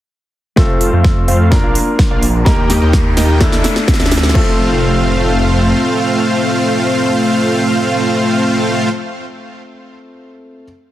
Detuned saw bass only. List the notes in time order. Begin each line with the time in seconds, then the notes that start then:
0.57 F1
0.93 F2
1.28 F2
1.63 A#1
2.11 A#1
2.46 D#2
2.82 D#2
3.17 D#2
3.52 D2
4.00 D2
4.35 F1